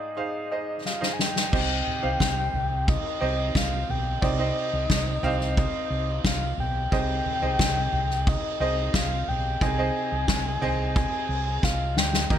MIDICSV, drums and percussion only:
0, 0, Header, 1, 2, 480
1, 0, Start_track
1, 0, Key_signature, -3, "minor"
1, 0, Tempo, 674157
1, 1088, Time_signature, 4, 2, 24, 8
1, 8819, End_track
2, 0, Start_track
2, 0, Title_t, "Drums"
2, 608, Note_on_c, 9, 38, 52
2, 679, Note_off_c, 9, 38, 0
2, 730, Note_on_c, 9, 38, 62
2, 801, Note_off_c, 9, 38, 0
2, 850, Note_on_c, 9, 38, 88
2, 921, Note_off_c, 9, 38, 0
2, 968, Note_on_c, 9, 38, 88
2, 1039, Note_off_c, 9, 38, 0
2, 1089, Note_on_c, 9, 36, 112
2, 1089, Note_on_c, 9, 49, 106
2, 1160, Note_off_c, 9, 49, 0
2, 1161, Note_off_c, 9, 36, 0
2, 1331, Note_on_c, 9, 51, 64
2, 1334, Note_on_c, 9, 43, 66
2, 1402, Note_off_c, 9, 51, 0
2, 1405, Note_off_c, 9, 43, 0
2, 1568, Note_on_c, 9, 36, 111
2, 1569, Note_on_c, 9, 38, 111
2, 1569, Note_on_c, 9, 51, 74
2, 1640, Note_off_c, 9, 36, 0
2, 1640, Note_off_c, 9, 38, 0
2, 1641, Note_off_c, 9, 51, 0
2, 1809, Note_on_c, 9, 51, 55
2, 1810, Note_on_c, 9, 43, 75
2, 1880, Note_off_c, 9, 51, 0
2, 1882, Note_off_c, 9, 43, 0
2, 2047, Note_on_c, 9, 51, 90
2, 2051, Note_on_c, 9, 36, 127
2, 2118, Note_off_c, 9, 51, 0
2, 2122, Note_off_c, 9, 36, 0
2, 2293, Note_on_c, 9, 51, 74
2, 2364, Note_off_c, 9, 51, 0
2, 2527, Note_on_c, 9, 51, 68
2, 2529, Note_on_c, 9, 36, 117
2, 2529, Note_on_c, 9, 38, 119
2, 2598, Note_off_c, 9, 51, 0
2, 2600, Note_off_c, 9, 36, 0
2, 2600, Note_off_c, 9, 38, 0
2, 2771, Note_on_c, 9, 51, 70
2, 2773, Note_on_c, 9, 43, 76
2, 2843, Note_off_c, 9, 51, 0
2, 2844, Note_off_c, 9, 43, 0
2, 3007, Note_on_c, 9, 36, 112
2, 3009, Note_on_c, 9, 51, 84
2, 3079, Note_off_c, 9, 36, 0
2, 3080, Note_off_c, 9, 51, 0
2, 3246, Note_on_c, 9, 51, 64
2, 3317, Note_off_c, 9, 51, 0
2, 3487, Note_on_c, 9, 36, 114
2, 3487, Note_on_c, 9, 38, 118
2, 3488, Note_on_c, 9, 51, 68
2, 3558, Note_off_c, 9, 36, 0
2, 3558, Note_off_c, 9, 38, 0
2, 3559, Note_off_c, 9, 51, 0
2, 3727, Note_on_c, 9, 51, 58
2, 3728, Note_on_c, 9, 43, 70
2, 3798, Note_off_c, 9, 51, 0
2, 3799, Note_off_c, 9, 43, 0
2, 3848, Note_on_c, 9, 38, 44
2, 3919, Note_off_c, 9, 38, 0
2, 3964, Note_on_c, 9, 51, 85
2, 3969, Note_on_c, 9, 36, 127
2, 4035, Note_off_c, 9, 51, 0
2, 4040, Note_off_c, 9, 36, 0
2, 4208, Note_on_c, 9, 51, 70
2, 4279, Note_off_c, 9, 51, 0
2, 4443, Note_on_c, 9, 51, 72
2, 4445, Note_on_c, 9, 38, 116
2, 4447, Note_on_c, 9, 36, 118
2, 4514, Note_off_c, 9, 51, 0
2, 4516, Note_off_c, 9, 38, 0
2, 4518, Note_off_c, 9, 36, 0
2, 4687, Note_on_c, 9, 51, 63
2, 4688, Note_on_c, 9, 43, 73
2, 4759, Note_off_c, 9, 51, 0
2, 4760, Note_off_c, 9, 43, 0
2, 4927, Note_on_c, 9, 51, 83
2, 4928, Note_on_c, 9, 36, 109
2, 4998, Note_off_c, 9, 51, 0
2, 4999, Note_off_c, 9, 36, 0
2, 5166, Note_on_c, 9, 51, 62
2, 5168, Note_on_c, 9, 43, 71
2, 5237, Note_off_c, 9, 51, 0
2, 5240, Note_off_c, 9, 43, 0
2, 5406, Note_on_c, 9, 36, 113
2, 5408, Note_on_c, 9, 38, 107
2, 5408, Note_on_c, 9, 51, 78
2, 5478, Note_off_c, 9, 36, 0
2, 5479, Note_off_c, 9, 38, 0
2, 5479, Note_off_c, 9, 51, 0
2, 5647, Note_on_c, 9, 51, 59
2, 5648, Note_on_c, 9, 43, 70
2, 5718, Note_off_c, 9, 51, 0
2, 5719, Note_off_c, 9, 43, 0
2, 5769, Note_on_c, 9, 38, 42
2, 5840, Note_off_c, 9, 38, 0
2, 5882, Note_on_c, 9, 51, 85
2, 5889, Note_on_c, 9, 36, 127
2, 5954, Note_off_c, 9, 51, 0
2, 5960, Note_off_c, 9, 36, 0
2, 6126, Note_on_c, 9, 51, 71
2, 6197, Note_off_c, 9, 51, 0
2, 6361, Note_on_c, 9, 51, 69
2, 6364, Note_on_c, 9, 38, 118
2, 6365, Note_on_c, 9, 36, 117
2, 6432, Note_off_c, 9, 51, 0
2, 6435, Note_off_c, 9, 38, 0
2, 6436, Note_off_c, 9, 36, 0
2, 6604, Note_on_c, 9, 51, 65
2, 6606, Note_on_c, 9, 43, 68
2, 6676, Note_off_c, 9, 51, 0
2, 6677, Note_off_c, 9, 43, 0
2, 6844, Note_on_c, 9, 36, 113
2, 6844, Note_on_c, 9, 51, 83
2, 6915, Note_off_c, 9, 51, 0
2, 6916, Note_off_c, 9, 36, 0
2, 7082, Note_on_c, 9, 51, 63
2, 7153, Note_off_c, 9, 51, 0
2, 7319, Note_on_c, 9, 38, 121
2, 7320, Note_on_c, 9, 51, 78
2, 7322, Note_on_c, 9, 36, 112
2, 7390, Note_off_c, 9, 38, 0
2, 7391, Note_off_c, 9, 51, 0
2, 7393, Note_off_c, 9, 36, 0
2, 7561, Note_on_c, 9, 51, 60
2, 7563, Note_on_c, 9, 43, 70
2, 7632, Note_off_c, 9, 51, 0
2, 7634, Note_off_c, 9, 43, 0
2, 7799, Note_on_c, 9, 51, 82
2, 7803, Note_on_c, 9, 36, 127
2, 7870, Note_off_c, 9, 51, 0
2, 7874, Note_off_c, 9, 36, 0
2, 8042, Note_on_c, 9, 51, 77
2, 8113, Note_off_c, 9, 51, 0
2, 8282, Note_on_c, 9, 36, 112
2, 8282, Note_on_c, 9, 38, 66
2, 8353, Note_off_c, 9, 36, 0
2, 8353, Note_off_c, 9, 38, 0
2, 8522, Note_on_c, 9, 38, 108
2, 8593, Note_off_c, 9, 38, 0
2, 8639, Note_on_c, 9, 38, 105
2, 8710, Note_off_c, 9, 38, 0
2, 8760, Note_on_c, 9, 36, 116
2, 8760, Note_on_c, 9, 51, 85
2, 8819, Note_off_c, 9, 36, 0
2, 8819, Note_off_c, 9, 51, 0
2, 8819, End_track
0, 0, End_of_file